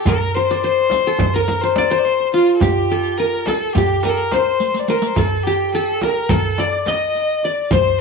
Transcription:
Already playing: G4 A4
0.05 A#4, riq, darbuka dum, frame drum
0.34 C5, riq
0.51 D5
0.62 C5, riq, darbuka ka
0.90 riq, darbuka tek, frame drum
1.07 A4
1.19 riq, darbuka dum, frame drum
1.34 A#4
1.48 riq, frame drum
1.61 C5
1.76 D5, riq, darbuka tek, frame drum
1.90 C5
1.99 D5
2.05 C5, riq
2.33 F4, darbuka ka
2.55 A4
2.61 G4, riq, darbuka dum, frame drum
2.89 A4, riq, darbuka ka
3.17 A#4, riq
3.45 A4, riq, darbuka tek, frame drum
3.73 G4, riq, darbuka dum, frame drum
3.78 G4
4.03 A#4, riq, darbuka tek, frame drum
4.09 A4
4.17 A#4
4.31 C5, riq, darbuka tek, frame drum
4.60 riq
4.74 riq
4.79 D5
4.88 A#4 C5, riq, darbuka ka
4.98 A#4, riq
5.07 C5
5.15 A4, riq, frame drum, darbuka dum
5.43 G4, riq
5.73 A4, riq, darbuka ka
6.01 A#4, darbuka tek, frame drum
6.29 A4, riq, frame drum, darbuka dum
6.58 D5, riq, darbuka tek, frame drum
6.86 D#5, riq, darbuka tek, frame drum
7.15 riq
7.43 D5, darbuka ka
7.71 C5, riq, frame drum, darbuka dum

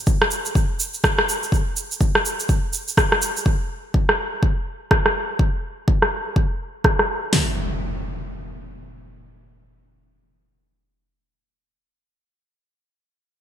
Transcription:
0.07 kick, shaker
0.22 cross-stick
0.31 shaker
0.45 shaker
0.55 kick, shaker
0.80 shaker
0.94 shaker
1.04 kick, cross-stick, shaker
1.18 cross-stick
1.29 shaker
1.43 shaker
1.52 kick, shaker
1.76 shaker
1.91 shaker
2.01 kick, shaker
2.15 cross-stick
2.25 shaker
2.40 shaker
2.49 kick, shaker
2.73 shaker
2.88 shaker
2.97 kick, cross-stick, shaker
3.12 cross-stick
3.22 shaker
3.37 shaker
3.46 kick
3.94 kick
4.09 cross-stick
4.43 kick
4.91 kick, cross-stick
5.06 cross-stick
5.39 kick
5.88 kick
6.02 cross-stick
6.36 kick
6.84 kick, cross-stick
6.99 cross-stick
7.33 snare, open hi-hat, impact

